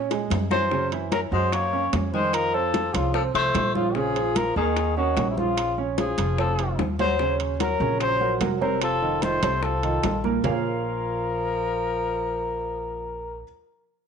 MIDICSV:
0, 0, Header, 1, 6, 480
1, 0, Start_track
1, 0, Key_signature, -5, "minor"
1, 0, Tempo, 405405
1, 847, Time_signature, 4, 2, 24, 8
1, 16664, End_track
2, 0, Start_track
2, 0, Title_t, "Trumpet"
2, 0, Program_c, 0, 56
2, 603, Note_on_c, 0, 72, 101
2, 1051, Note_off_c, 0, 72, 0
2, 1323, Note_on_c, 0, 70, 95
2, 1431, Note_off_c, 0, 70, 0
2, 1566, Note_on_c, 0, 72, 93
2, 1808, Note_on_c, 0, 73, 99
2, 1825, Note_off_c, 0, 72, 0
2, 2286, Note_off_c, 0, 73, 0
2, 2524, Note_on_c, 0, 72, 100
2, 2770, Note_on_c, 0, 70, 108
2, 2787, Note_off_c, 0, 72, 0
2, 3009, Note_on_c, 0, 69, 108
2, 3027, Note_off_c, 0, 70, 0
2, 3481, Note_on_c, 0, 65, 85
2, 3498, Note_off_c, 0, 69, 0
2, 3711, Note_off_c, 0, 65, 0
2, 3718, Note_on_c, 0, 69, 87
2, 3828, Note_off_c, 0, 69, 0
2, 3966, Note_on_c, 0, 72, 103
2, 4411, Note_off_c, 0, 72, 0
2, 4436, Note_on_c, 0, 65, 87
2, 4675, Note_on_c, 0, 68, 96
2, 4693, Note_off_c, 0, 65, 0
2, 5165, Note_on_c, 0, 70, 95
2, 5183, Note_off_c, 0, 68, 0
2, 5404, Note_off_c, 0, 70, 0
2, 5410, Note_on_c, 0, 68, 89
2, 5853, Note_off_c, 0, 68, 0
2, 5882, Note_on_c, 0, 66, 87
2, 6251, Note_off_c, 0, 66, 0
2, 6274, Note_on_c, 0, 64, 61
2, 6365, Note_on_c, 0, 65, 94
2, 6383, Note_off_c, 0, 64, 0
2, 6843, Note_off_c, 0, 65, 0
2, 7094, Note_on_c, 0, 68, 80
2, 7535, Note_off_c, 0, 68, 0
2, 7574, Note_on_c, 0, 69, 82
2, 8015, Note_off_c, 0, 69, 0
2, 8287, Note_on_c, 0, 72, 101
2, 8731, Note_off_c, 0, 72, 0
2, 9007, Note_on_c, 0, 70, 93
2, 9451, Note_off_c, 0, 70, 0
2, 9484, Note_on_c, 0, 72, 102
2, 9930, Note_off_c, 0, 72, 0
2, 10206, Note_on_c, 0, 70, 86
2, 10428, Note_off_c, 0, 70, 0
2, 10450, Note_on_c, 0, 69, 92
2, 10920, Note_on_c, 0, 72, 95
2, 10938, Note_off_c, 0, 69, 0
2, 11404, Note_on_c, 0, 69, 82
2, 11421, Note_off_c, 0, 72, 0
2, 12125, Note_off_c, 0, 69, 0
2, 12365, Note_on_c, 0, 70, 92
2, 15888, Note_off_c, 0, 70, 0
2, 16664, End_track
3, 0, Start_track
3, 0, Title_t, "Grand piano"
3, 0, Program_c, 1, 0
3, 126, Note_on_c, 1, 56, 75
3, 131, Note_on_c, 1, 68, 75
3, 520, Note_off_c, 1, 56, 0
3, 523, Note_off_c, 1, 68, 0
3, 611, Note_on_c, 1, 52, 71
3, 614, Note_on_c, 1, 64, 72
3, 806, Note_off_c, 1, 52, 0
3, 808, Note_off_c, 1, 64, 0
3, 848, Note_on_c, 1, 49, 76
3, 851, Note_on_c, 1, 61, 74
3, 1044, Note_off_c, 1, 49, 0
3, 1046, Note_off_c, 1, 61, 0
3, 1092, Note_on_c, 1, 52, 70
3, 1095, Note_on_c, 1, 64, 71
3, 1483, Note_off_c, 1, 52, 0
3, 1485, Note_off_c, 1, 64, 0
3, 1565, Note_on_c, 1, 54, 67
3, 1570, Note_on_c, 1, 66, 70
3, 1959, Note_off_c, 1, 54, 0
3, 1962, Note_off_c, 1, 66, 0
3, 2048, Note_on_c, 1, 61, 77
3, 2051, Note_on_c, 1, 73, 69
3, 2440, Note_off_c, 1, 61, 0
3, 2442, Note_off_c, 1, 73, 0
3, 2531, Note_on_c, 1, 51, 74
3, 2535, Note_on_c, 1, 63, 74
3, 2921, Note_off_c, 1, 51, 0
3, 2924, Note_off_c, 1, 63, 0
3, 3007, Note_on_c, 1, 60, 69
3, 3010, Note_on_c, 1, 72, 71
3, 3399, Note_off_c, 1, 60, 0
3, 3401, Note_off_c, 1, 72, 0
3, 3488, Note_on_c, 1, 53, 70
3, 3492, Note_on_c, 1, 65, 66
3, 3683, Note_off_c, 1, 53, 0
3, 3685, Note_off_c, 1, 65, 0
3, 3717, Note_on_c, 1, 60, 71
3, 3722, Note_on_c, 1, 72, 67
3, 3916, Note_off_c, 1, 60, 0
3, 3919, Note_off_c, 1, 72, 0
3, 3963, Note_on_c, 1, 53, 70
3, 3967, Note_on_c, 1, 65, 78
3, 4357, Note_off_c, 1, 53, 0
3, 4359, Note_off_c, 1, 65, 0
3, 4439, Note_on_c, 1, 53, 77
3, 4444, Note_on_c, 1, 65, 73
3, 4637, Note_off_c, 1, 53, 0
3, 4640, Note_off_c, 1, 65, 0
3, 4685, Note_on_c, 1, 49, 79
3, 4688, Note_on_c, 1, 61, 72
3, 4881, Note_off_c, 1, 49, 0
3, 4882, Note_off_c, 1, 61, 0
3, 4928, Note_on_c, 1, 53, 75
3, 4934, Note_on_c, 1, 65, 75
3, 5319, Note_off_c, 1, 53, 0
3, 5323, Note_off_c, 1, 65, 0
3, 5408, Note_on_c, 1, 58, 69
3, 5410, Note_on_c, 1, 70, 73
3, 5799, Note_off_c, 1, 58, 0
3, 5800, Note_off_c, 1, 70, 0
3, 5888, Note_on_c, 1, 61, 78
3, 5892, Note_on_c, 1, 73, 82
3, 6279, Note_off_c, 1, 61, 0
3, 6281, Note_off_c, 1, 73, 0
3, 6371, Note_on_c, 1, 53, 73
3, 6373, Note_on_c, 1, 65, 72
3, 6761, Note_off_c, 1, 53, 0
3, 6762, Note_off_c, 1, 65, 0
3, 6844, Note_on_c, 1, 61, 73
3, 6845, Note_on_c, 1, 73, 71
3, 7237, Note_off_c, 1, 61, 0
3, 7237, Note_off_c, 1, 73, 0
3, 7322, Note_on_c, 1, 53, 74
3, 7326, Note_on_c, 1, 65, 71
3, 7519, Note_off_c, 1, 53, 0
3, 7521, Note_off_c, 1, 65, 0
3, 7562, Note_on_c, 1, 60, 69
3, 7569, Note_on_c, 1, 72, 69
3, 7759, Note_off_c, 1, 60, 0
3, 7763, Note_off_c, 1, 72, 0
3, 7805, Note_on_c, 1, 53, 69
3, 7809, Note_on_c, 1, 65, 72
3, 8197, Note_off_c, 1, 53, 0
3, 8199, Note_off_c, 1, 65, 0
3, 8283, Note_on_c, 1, 54, 73
3, 8287, Note_on_c, 1, 66, 75
3, 8480, Note_off_c, 1, 54, 0
3, 8482, Note_off_c, 1, 66, 0
3, 8524, Note_on_c, 1, 49, 67
3, 8527, Note_on_c, 1, 61, 75
3, 8530, Note_on_c, 1, 73, 73
3, 8917, Note_off_c, 1, 49, 0
3, 8919, Note_off_c, 1, 61, 0
3, 8921, Note_off_c, 1, 73, 0
3, 9001, Note_on_c, 1, 54, 68
3, 9005, Note_on_c, 1, 66, 73
3, 9010, Note_on_c, 1, 70, 68
3, 9198, Note_off_c, 1, 54, 0
3, 9201, Note_off_c, 1, 66, 0
3, 9204, Note_off_c, 1, 70, 0
3, 9241, Note_on_c, 1, 49, 73
3, 9244, Note_on_c, 1, 61, 76
3, 9247, Note_on_c, 1, 73, 74
3, 9635, Note_off_c, 1, 49, 0
3, 9637, Note_off_c, 1, 61, 0
3, 9639, Note_off_c, 1, 73, 0
3, 9715, Note_on_c, 1, 54, 68
3, 9721, Note_on_c, 1, 66, 72
3, 9724, Note_on_c, 1, 70, 68
3, 9915, Note_off_c, 1, 54, 0
3, 9919, Note_off_c, 1, 66, 0
3, 9920, Note_off_c, 1, 70, 0
3, 9953, Note_on_c, 1, 54, 64
3, 9959, Note_on_c, 1, 66, 66
3, 9962, Note_on_c, 1, 70, 68
3, 10154, Note_off_c, 1, 54, 0
3, 10158, Note_off_c, 1, 66, 0
3, 10159, Note_off_c, 1, 70, 0
3, 10198, Note_on_c, 1, 48, 84
3, 10200, Note_on_c, 1, 60, 79
3, 10207, Note_on_c, 1, 72, 84
3, 10594, Note_off_c, 1, 48, 0
3, 10595, Note_off_c, 1, 60, 0
3, 10599, Note_off_c, 1, 72, 0
3, 10680, Note_on_c, 1, 51, 74
3, 10682, Note_on_c, 1, 63, 69
3, 10687, Note_on_c, 1, 65, 73
3, 10878, Note_off_c, 1, 51, 0
3, 10880, Note_off_c, 1, 63, 0
3, 10882, Note_off_c, 1, 65, 0
3, 10925, Note_on_c, 1, 51, 72
3, 10928, Note_on_c, 1, 63, 66
3, 10933, Note_on_c, 1, 65, 72
3, 11122, Note_off_c, 1, 51, 0
3, 11123, Note_off_c, 1, 63, 0
3, 11126, Note_off_c, 1, 65, 0
3, 11166, Note_on_c, 1, 48, 72
3, 11167, Note_on_c, 1, 60, 74
3, 11171, Note_on_c, 1, 72, 77
3, 11559, Note_off_c, 1, 48, 0
3, 11560, Note_off_c, 1, 60, 0
3, 11562, Note_off_c, 1, 72, 0
3, 11640, Note_on_c, 1, 51, 74
3, 11643, Note_on_c, 1, 63, 68
3, 11647, Note_on_c, 1, 65, 71
3, 12036, Note_off_c, 1, 51, 0
3, 12038, Note_off_c, 1, 63, 0
3, 12040, Note_off_c, 1, 65, 0
3, 12129, Note_on_c, 1, 46, 77
3, 12131, Note_on_c, 1, 58, 79
3, 12135, Note_on_c, 1, 70, 82
3, 12324, Note_off_c, 1, 46, 0
3, 12326, Note_off_c, 1, 58, 0
3, 12328, Note_off_c, 1, 70, 0
3, 12364, Note_on_c, 1, 58, 76
3, 12366, Note_on_c, 1, 65, 76
3, 12369, Note_on_c, 1, 68, 76
3, 12369, Note_on_c, 1, 70, 72
3, 12373, Note_on_c, 1, 73, 72
3, 12374, Note_on_c, 1, 77, 88
3, 15887, Note_off_c, 1, 58, 0
3, 15889, Note_off_c, 1, 65, 0
3, 15892, Note_off_c, 1, 68, 0
3, 15892, Note_off_c, 1, 70, 0
3, 15896, Note_off_c, 1, 73, 0
3, 15897, Note_off_c, 1, 77, 0
3, 16664, End_track
4, 0, Start_track
4, 0, Title_t, "Tenor saxophone"
4, 0, Program_c, 2, 66
4, 599, Note_on_c, 2, 54, 88
4, 1049, Note_off_c, 2, 54, 0
4, 1324, Note_on_c, 2, 54, 77
4, 1432, Note_off_c, 2, 54, 0
4, 1571, Note_on_c, 2, 56, 84
4, 1809, Note_on_c, 2, 58, 86
4, 1827, Note_off_c, 2, 56, 0
4, 2287, Note_off_c, 2, 58, 0
4, 2532, Note_on_c, 2, 56, 83
4, 2773, Note_on_c, 2, 53, 87
4, 2791, Note_off_c, 2, 56, 0
4, 3015, Note_off_c, 2, 53, 0
4, 3015, Note_on_c, 2, 53, 86
4, 3492, Note_on_c, 2, 49, 74
4, 3509, Note_off_c, 2, 53, 0
4, 3719, Note_off_c, 2, 49, 0
4, 3726, Note_on_c, 2, 53, 76
4, 3834, Note_off_c, 2, 53, 0
4, 3964, Note_on_c, 2, 57, 87
4, 4409, Note_off_c, 2, 57, 0
4, 4446, Note_on_c, 2, 49, 75
4, 4682, Note_on_c, 2, 53, 86
4, 4700, Note_off_c, 2, 49, 0
4, 5168, Note_off_c, 2, 53, 0
4, 5168, Note_on_c, 2, 53, 79
4, 5399, Note_off_c, 2, 53, 0
4, 5406, Note_on_c, 2, 51, 82
4, 5850, Note_off_c, 2, 51, 0
4, 5885, Note_on_c, 2, 51, 71
4, 6253, Note_off_c, 2, 51, 0
4, 6281, Note_on_c, 2, 48, 51
4, 6371, Note_on_c, 2, 49, 77
4, 6389, Note_off_c, 2, 48, 0
4, 6846, Note_off_c, 2, 49, 0
4, 7094, Note_on_c, 2, 53, 74
4, 7535, Note_off_c, 2, 53, 0
4, 7576, Note_on_c, 2, 53, 67
4, 8016, Note_off_c, 2, 53, 0
4, 8285, Note_on_c, 2, 54, 96
4, 8730, Note_off_c, 2, 54, 0
4, 9004, Note_on_c, 2, 54, 82
4, 9450, Note_off_c, 2, 54, 0
4, 9484, Note_on_c, 2, 54, 84
4, 9930, Note_off_c, 2, 54, 0
4, 10205, Note_on_c, 2, 54, 75
4, 10428, Note_off_c, 2, 54, 0
4, 10451, Note_on_c, 2, 53, 83
4, 10926, Note_on_c, 2, 57, 82
4, 10944, Note_off_c, 2, 53, 0
4, 11406, Note_on_c, 2, 53, 65
4, 11424, Note_off_c, 2, 57, 0
4, 12126, Note_off_c, 2, 53, 0
4, 12365, Note_on_c, 2, 53, 78
4, 15888, Note_off_c, 2, 53, 0
4, 16664, End_track
5, 0, Start_track
5, 0, Title_t, "Upright bass"
5, 0, Program_c, 3, 32
5, 0, Note_on_c, 3, 46, 87
5, 319, Note_off_c, 3, 46, 0
5, 363, Note_on_c, 3, 42, 89
5, 1492, Note_off_c, 3, 42, 0
5, 1559, Note_on_c, 3, 42, 86
5, 2234, Note_off_c, 3, 42, 0
5, 2284, Note_on_c, 3, 41, 84
5, 3412, Note_off_c, 3, 41, 0
5, 3481, Note_on_c, 3, 36, 85
5, 3928, Note_off_c, 3, 36, 0
5, 3960, Note_on_c, 3, 36, 67
5, 4185, Note_off_c, 3, 36, 0
5, 4196, Note_on_c, 3, 34, 87
5, 5328, Note_off_c, 3, 34, 0
5, 5400, Note_on_c, 3, 39, 92
5, 6073, Note_off_c, 3, 39, 0
5, 6116, Note_on_c, 3, 34, 84
5, 7247, Note_off_c, 3, 34, 0
5, 7318, Note_on_c, 3, 29, 92
5, 7992, Note_off_c, 3, 29, 0
5, 8036, Note_on_c, 3, 39, 81
5, 9168, Note_off_c, 3, 39, 0
5, 9236, Note_on_c, 3, 34, 93
5, 9912, Note_off_c, 3, 34, 0
5, 9957, Note_on_c, 3, 29, 75
5, 11089, Note_off_c, 3, 29, 0
5, 11161, Note_on_c, 3, 36, 86
5, 11836, Note_off_c, 3, 36, 0
5, 11880, Note_on_c, 3, 34, 76
5, 12307, Note_off_c, 3, 34, 0
5, 12361, Note_on_c, 3, 34, 87
5, 15884, Note_off_c, 3, 34, 0
5, 16664, End_track
6, 0, Start_track
6, 0, Title_t, "Drums"
6, 120, Note_on_c, 9, 63, 32
6, 129, Note_on_c, 9, 60, 77
6, 132, Note_on_c, 9, 65, 64
6, 239, Note_off_c, 9, 63, 0
6, 247, Note_off_c, 9, 60, 0
6, 251, Note_off_c, 9, 65, 0
6, 359, Note_on_c, 9, 63, 81
6, 371, Note_on_c, 9, 61, 94
6, 372, Note_on_c, 9, 65, 88
6, 372, Note_on_c, 9, 66, 71
6, 478, Note_off_c, 9, 63, 0
6, 489, Note_off_c, 9, 61, 0
6, 491, Note_off_c, 9, 65, 0
6, 491, Note_off_c, 9, 66, 0
6, 599, Note_on_c, 9, 63, 72
6, 606, Note_on_c, 9, 61, 80
6, 718, Note_off_c, 9, 63, 0
6, 724, Note_off_c, 9, 61, 0
6, 843, Note_on_c, 9, 63, 32
6, 846, Note_on_c, 9, 60, 59
6, 962, Note_off_c, 9, 63, 0
6, 964, Note_off_c, 9, 60, 0
6, 1088, Note_on_c, 9, 63, 36
6, 1090, Note_on_c, 9, 65, 63
6, 1207, Note_off_c, 9, 63, 0
6, 1209, Note_off_c, 9, 65, 0
6, 1323, Note_on_c, 9, 63, 97
6, 1324, Note_on_c, 9, 60, 59
6, 1328, Note_on_c, 9, 65, 84
6, 1328, Note_on_c, 9, 66, 54
6, 1442, Note_off_c, 9, 60, 0
6, 1442, Note_off_c, 9, 63, 0
6, 1446, Note_off_c, 9, 65, 0
6, 1446, Note_off_c, 9, 66, 0
6, 1806, Note_on_c, 9, 60, 68
6, 1810, Note_on_c, 9, 63, 35
6, 1813, Note_on_c, 9, 65, 67
6, 1924, Note_off_c, 9, 60, 0
6, 1929, Note_off_c, 9, 63, 0
6, 1932, Note_off_c, 9, 65, 0
6, 2052, Note_on_c, 9, 63, 34
6, 2170, Note_off_c, 9, 63, 0
6, 2286, Note_on_c, 9, 65, 81
6, 2286, Note_on_c, 9, 66, 77
6, 2287, Note_on_c, 9, 60, 62
6, 2287, Note_on_c, 9, 61, 76
6, 2290, Note_on_c, 9, 63, 83
6, 2404, Note_off_c, 9, 65, 0
6, 2404, Note_off_c, 9, 66, 0
6, 2405, Note_off_c, 9, 60, 0
6, 2405, Note_off_c, 9, 61, 0
6, 2408, Note_off_c, 9, 63, 0
6, 2530, Note_on_c, 9, 63, 80
6, 2648, Note_off_c, 9, 63, 0
6, 2763, Note_on_c, 9, 60, 61
6, 2770, Note_on_c, 9, 63, 32
6, 2770, Note_on_c, 9, 65, 91
6, 2882, Note_off_c, 9, 60, 0
6, 2889, Note_off_c, 9, 63, 0
6, 2889, Note_off_c, 9, 65, 0
6, 3010, Note_on_c, 9, 63, 37
6, 3128, Note_off_c, 9, 63, 0
6, 3243, Note_on_c, 9, 60, 60
6, 3245, Note_on_c, 9, 65, 66
6, 3245, Note_on_c, 9, 66, 56
6, 3249, Note_on_c, 9, 63, 93
6, 3361, Note_off_c, 9, 60, 0
6, 3364, Note_off_c, 9, 65, 0
6, 3364, Note_off_c, 9, 66, 0
6, 3367, Note_off_c, 9, 63, 0
6, 3481, Note_on_c, 9, 60, 32
6, 3485, Note_on_c, 9, 63, 100
6, 3488, Note_on_c, 9, 65, 89
6, 3599, Note_off_c, 9, 60, 0
6, 3604, Note_off_c, 9, 63, 0
6, 3606, Note_off_c, 9, 65, 0
6, 3720, Note_on_c, 9, 60, 73
6, 3725, Note_on_c, 9, 63, 31
6, 3838, Note_off_c, 9, 60, 0
6, 3844, Note_off_c, 9, 63, 0
6, 3960, Note_on_c, 9, 60, 36
6, 3962, Note_on_c, 9, 63, 34
6, 3969, Note_on_c, 9, 65, 66
6, 4078, Note_off_c, 9, 60, 0
6, 4081, Note_off_c, 9, 63, 0
6, 4087, Note_off_c, 9, 65, 0
6, 4198, Note_on_c, 9, 60, 62
6, 4198, Note_on_c, 9, 61, 79
6, 4204, Note_on_c, 9, 63, 80
6, 4204, Note_on_c, 9, 65, 84
6, 4204, Note_on_c, 9, 66, 79
6, 4316, Note_off_c, 9, 60, 0
6, 4316, Note_off_c, 9, 61, 0
6, 4322, Note_off_c, 9, 63, 0
6, 4323, Note_off_c, 9, 65, 0
6, 4323, Note_off_c, 9, 66, 0
6, 4439, Note_on_c, 9, 60, 32
6, 4444, Note_on_c, 9, 63, 83
6, 4557, Note_off_c, 9, 60, 0
6, 4563, Note_off_c, 9, 63, 0
6, 4676, Note_on_c, 9, 60, 60
6, 4680, Note_on_c, 9, 63, 34
6, 4795, Note_off_c, 9, 60, 0
6, 4799, Note_off_c, 9, 63, 0
6, 4922, Note_on_c, 9, 63, 37
6, 4927, Note_on_c, 9, 65, 65
6, 5041, Note_off_c, 9, 63, 0
6, 5046, Note_off_c, 9, 65, 0
6, 5157, Note_on_c, 9, 60, 59
6, 5162, Note_on_c, 9, 63, 96
6, 5162, Note_on_c, 9, 65, 78
6, 5162, Note_on_c, 9, 66, 60
6, 5275, Note_off_c, 9, 60, 0
6, 5280, Note_off_c, 9, 63, 0
6, 5280, Note_off_c, 9, 65, 0
6, 5280, Note_off_c, 9, 66, 0
6, 5639, Note_on_c, 9, 63, 32
6, 5641, Note_on_c, 9, 60, 67
6, 5644, Note_on_c, 9, 65, 64
6, 5758, Note_off_c, 9, 63, 0
6, 5759, Note_off_c, 9, 60, 0
6, 5762, Note_off_c, 9, 65, 0
6, 5882, Note_on_c, 9, 63, 36
6, 6001, Note_off_c, 9, 63, 0
6, 6117, Note_on_c, 9, 60, 66
6, 6117, Note_on_c, 9, 61, 76
6, 6121, Note_on_c, 9, 63, 81
6, 6125, Note_on_c, 9, 65, 77
6, 6125, Note_on_c, 9, 66, 70
6, 6236, Note_off_c, 9, 60, 0
6, 6236, Note_off_c, 9, 61, 0
6, 6239, Note_off_c, 9, 63, 0
6, 6243, Note_off_c, 9, 65, 0
6, 6243, Note_off_c, 9, 66, 0
6, 6363, Note_on_c, 9, 63, 78
6, 6481, Note_off_c, 9, 63, 0
6, 6599, Note_on_c, 9, 60, 58
6, 6601, Note_on_c, 9, 63, 33
6, 6602, Note_on_c, 9, 65, 94
6, 6718, Note_off_c, 9, 60, 0
6, 6719, Note_off_c, 9, 63, 0
6, 6721, Note_off_c, 9, 65, 0
6, 6842, Note_on_c, 9, 63, 37
6, 6960, Note_off_c, 9, 63, 0
6, 7079, Note_on_c, 9, 60, 62
6, 7080, Note_on_c, 9, 63, 93
6, 7083, Note_on_c, 9, 65, 61
6, 7083, Note_on_c, 9, 66, 53
6, 7198, Note_off_c, 9, 60, 0
6, 7198, Note_off_c, 9, 63, 0
6, 7202, Note_off_c, 9, 65, 0
6, 7202, Note_off_c, 9, 66, 0
6, 7315, Note_on_c, 9, 63, 103
6, 7319, Note_on_c, 9, 60, 31
6, 7323, Note_on_c, 9, 65, 96
6, 7434, Note_off_c, 9, 63, 0
6, 7437, Note_off_c, 9, 60, 0
6, 7441, Note_off_c, 9, 65, 0
6, 7559, Note_on_c, 9, 60, 73
6, 7562, Note_on_c, 9, 63, 32
6, 7678, Note_off_c, 9, 60, 0
6, 7681, Note_off_c, 9, 63, 0
6, 7800, Note_on_c, 9, 65, 65
6, 7801, Note_on_c, 9, 63, 33
6, 7802, Note_on_c, 9, 60, 33
6, 7918, Note_off_c, 9, 65, 0
6, 7919, Note_off_c, 9, 63, 0
6, 7921, Note_off_c, 9, 60, 0
6, 8040, Note_on_c, 9, 60, 66
6, 8040, Note_on_c, 9, 61, 86
6, 8041, Note_on_c, 9, 63, 81
6, 8043, Note_on_c, 9, 65, 70
6, 8158, Note_off_c, 9, 60, 0
6, 8158, Note_off_c, 9, 61, 0
6, 8160, Note_off_c, 9, 63, 0
6, 8161, Note_off_c, 9, 65, 0
6, 8278, Note_on_c, 9, 63, 78
6, 8281, Note_on_c, 9, 60, 32
6, 8281, Note_on_c, 9, 66, 78
6, 8396, Note_off_c, 9, 63, 0
6, 8399, Note_off_c, 9, 60, 0
6, 8399, Note_off_c, 9, 66, 0
6, 8518, Note_on_c, 9, 60, 60
6, 8523, Note_on_c, 9, 63, 35
6, 8636, Note_off_c, 9, 60, 0
6, 8641, Note_off_c, 9, 63, 0
6, 8761, Note_on_c, 9, 65, 65
6, 8767, Note_on_c, 9, 63, 36
6, 8879, Note_off_c, 9, 65, 0
6, 8885, Note_off_c, 9, 63, 0
6, 9001, Note_on_c, 9, 60, 55
6, 9001, Note_on_c, 9, 65, 81
6, 9001, Note_on_c, 9, 66, 55
6, 9004, Note_on_c, 9, 63, 88
6, 9119, Note_off_c, 9, 60, 0
6, 9119, Note_off_c, 9, 65, 0
6, 9119, Note_off_c, 9, 66, 0
6, 9122, Note_off_c, 9, 63, 0
6, 9477, Note_on_c, 9, 60, 69
6, 9481, Note_on_c, 9, 65, 65
6, 9483, Note_on_c, 9, 63, 31
6, 9596, Note_off_c, 9, 60, 0
6, 9599, Note_off_c, 9, 65, 0
6, 9602, Note_off_c, 9, 63, 0
6, 9722, Note_on_c, 9, 63, 33
6, 9840, Note_off_c, 9, 63, 0
6, 9954, Note_on_c, 9, 65, 83
6, 9954, Note_on_c, 9, 66, 73
6, 9960, Note_on_c, 9, 60, 59
6, 9960, Note_on_c, 9, 61, 80
6, 9960, Note_on_c, 9, 63, 82
6, 10072, Note_off_c, 9, 65, 0
6, 10072, Note_off_c, 9, 66, 0
6, 10078, Note_off_c, 9, 60, 0
6, 10078, Note_off_c, 9, 61, 0
6, 10079, Note_off_c, 9, 63, 0
6, 10202, Note_on_c, 9, 63, 72
6, 10320, Note_off_c, 9, 63, 0
6, 10437, Note_on_c, 9, 60, 61
6, 10437, Note_on_c, 9, 65, 86
6, 10446, Note_on_c, 9, 63, 33
6, 10555, Note_off_c, 9, 60, 0
6, 10555, Note_off_c, 9, 65, 0
6, 10565, Note_off_c, 9, 63, 0
6, 10686, Note_on_c, 9, 63, 36
6, 10804, Note_off_c, 9, 63, 0
6, 10918, Note_on_c, 9, 65, 64
6, 10918, Note_on_c, 9, 66, 57
6, 10921, Note_on_c, 9, 60, 52
6, 10927, Note_on_c, 9, 63, 87
6, 11036, Note_off_c, 9, 65, 0
6, 11036, Note_off_c, 9, 66, 0
6, 11039, Note_off_c, 9, 60, 0
6, 11046, Note_off_c, 9, 63, 0
6, 11161, Note_on_c, 9, 65, 91
6, 11163, Note_on_c, 9, 63, 99
6, 11280, Note_off_c, 9, 65, 0
6, 11282, Note_off_c, 9, 63, 0
6, 11397, Note_on_c, 9, 60, 68
6, 11404, Note_on_c, 9, 63, 35
6, 11516, Note_off_c, 9, 60, 0
6, 11522, Note_off_c, 9, 63, 0
6, 11640, Note_on_c, 9, 60, 33
6, 11642, Note_on_c, 9, 65, 58
6, 11647, Note_on_c, 9, 63, 32
6, 11758, Note_off_c, 9, 60, 0
6, 11761, Note_off_c, 9, 65, 0
6, 11766, Note_off_c, 9, 63, 0
6, 11880, Note_on_c, 9, 60, 58
6, 11880, Note_on_c, 9, 61, 81
6, 11882, Note_on_c, 9, 65, 85
6, 11882, Note_on_c, 9, 66, 68
6, 11887, Note_on_c, 9, 63, 81
6, 11999, Note_off_c, 9, 60, 0
6, 11999, Note_off_c, 9, 61, 0
6, 12001, Note_off_c, 9, 65, 0
6, 12001, Note_off_c, 9, 66, 0
6, 12006, Note_off_c, 9, 63, 0
6, 12121, Note_on_c, 9, 60, 30
6, 12126, Note_on_c, 9, 63, 75
6, 12239, Note_off_c, 9, 60, 0
6, 12244, Note_off_c, 9, 63, 0
6, 12359, Note_on_c, 9, 61, 80
6, 12362, Note_on_c, 9, 64, 92
6, 12363, Note_on_c, 9, 66, 95
6, 12477, Note_off_c, 9, 61, 0
6, 12480, Note_off_c, 9, 64, 0
6, 12481, Note_off_c, 9, 66, 0
6, 16664, End_track
0, 0, End_of_file